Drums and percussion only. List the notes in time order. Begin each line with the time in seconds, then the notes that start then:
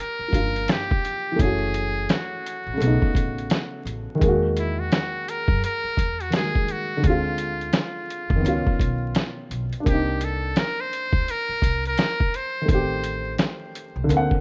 0.33 kick, closed hi-hat
0.56 closed hi-hat
0.68 snare, closed hi-hat
0.91 kick
1.05 closed hi-hat
1.39 kick, closed hi-hat
1.74 closed hi-hat
2.09 snare, closed hi-hat
2.46 closed hi-hat
2.82 closed hi-hat
3.02 kick
3.15 kick, closed hi-hat
3.38 closed hi-hat
3.50 snare, closed hi-hat
3.87 closed hi-hat
4.21 kick, closed hi-hat
4.57 closed hi-hat
4.92 snare, closed hi-hat
5.28 closed hi-hat
5.48 kick
5.64 closed hi-hat
5.97 kick, closed hi-hat
6.20 closed hi-hat
6.32 snare, closed hi-hat
6.55 kick
6.68 closed hi-hat
7.04 kick, closed hi-hat
7.38 closed hi-hat
7.61 closed hi-hat
7.73 snare, closed hi-hat
8.10 closed hi-hat
8.30 kick
8.46 closed hi-hat
8.67 kick
8.80 kick, closed hi-hat
9.15 snare, closed hi-hat
9.51 closed hi-hat
9.73 closed hi-hat
9.86 kick, closed hi-hat
10.21 closed hi-hat
10.56 snare, closed hi-hat
10.93 closed hi-hat
11.13 kick
11.28 closed hi-hat
11.62 kick, closed hi-hat
11.85 closed hi-hat
11.97 snare, closed hi-hat
12.20 kick
12.34 closed hi-hat
12.69 kick, closed hi-hat
13.04 closed hi-hat
13.38 snare, closed hi-hat
13.75 closed hi-hat
14.10 closed hi-hat
14.31 kick